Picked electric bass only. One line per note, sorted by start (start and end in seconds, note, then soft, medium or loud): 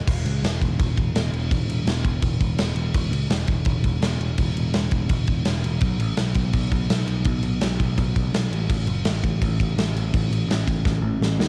0.08 0.24 E1 medium
0.25 0.42 C#2 medium
0.43 0.60 E1 medium
0.61 0.78 E1 medium
0.79 0.96 E1 loud
0.98 1.14 E1 medium
1.15 1.32 E1 medium
1.32 1.49 E1 medium
1.51 1.67 E1 loud
1.67 1.85 E1 medium
1.85 2.03 E1 medium
2.05 2.22 E1 medium
2.22 2.39 E1 loud
2.41 2.57 E1 medium
2.58 2.74 E1 medium
2.75 2.93 E1 medium
2.94 3.10 E1 loud
3.11 3.27 C#2 medium
3.28 3.46 E1 medium
3.48 3.65 E1 medium
3.66 3.83 E1 loud
3.84 4.00 E1 loud
4.01 4.18 E1 medium
4.19 4.36 E1 medium
4.38 4.55 E1 medium
4.56 4.73 E1 medium
4.74 4.91 E1 medium
4.92 5.09 E1 medium
5.09 5.27 E1 loud
5.28 5.45 E1 medium
5.45 5.63 E1 medium
5.64 5.81 E1 medium
5.82 5.99 B1 loud
5.99 6.16 A1 medium
6.17 6.34 B1 medium
6.35 6.53 B1 medium
6.54 6.71 B1 loud
6.72 6.89 B1 medium
6.90 7.07 B1 medium
7.08 7.25 B1 medium
7.25 7.42 B1 loud
7.43 7.60 B1 medium
7.61 7.78 B1 medium
7.80 7.97 B1 medium
7.98 8.15 B1 loud
8.16 8.32 B1 loud
8.33 8.50 B1 medium
8.51 8.68 A1 medium
8.69 8.86 A1 loud
8.87 9.04 F#1 medium
9.06 9.23 A1 medium
9.23 9.40 A1 medium
9.41 9.58 A1 loud
9.60 9.76 A1 medium
9.76 9.94 A1 medium
9.95 10.12 A1 medium
10.14 10.29 A1 loud
10.30 10.47 A1 medium
10.47 10.65 A1 medium
10.67 10.84 A1 medium
10.85 11.01 A1 loud
11.02 11.19 A1 medium
11.20 11.37 A1 medium
11.38 11.48 D#2 medium